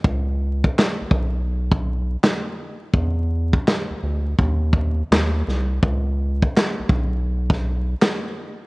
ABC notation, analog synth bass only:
X:1
M:4/4
L:1/16
Q:"Swing 16ths" 1/4=83
K:B
V:1 name="Analog synth bass" clef=bass
C,,4 z B,,, B,,,6 z4 | E,,4 z =D,, D,,2 _E,,4 E,,2 =C,,2 | C,,4 z B,,, B,,,6 z4 |]